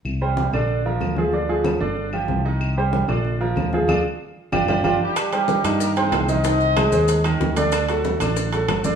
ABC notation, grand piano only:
X:1
M:4/4
L:1/8
Q:1/4=188
K:Cm
V:1 name="Grand piano"
z [G,Gc]2 [D,Dd]2 [F,FB]2 [F,FA] | [D,Dd] [F,FA]2 [D,Dd]2 [F,FG]2 [E,Ee]- | [E,Ee] [G,Gc]2 [D,Dd]2 [F,FB]2 [F,FA] | [DFA] z3 [DFG] [DFG] [DFG] z |
z [G,Gc]2 [E,Ee]2 [E,cg]2 [E,Ee] | [E,Ee]2 [A,Ac] [A,Ac]2 [E,Ee]2 [D,Dd]- | [D,Dd] [^F,^F=A]2 [D,Dd]2 [F,FA]2 [D,Dd] |]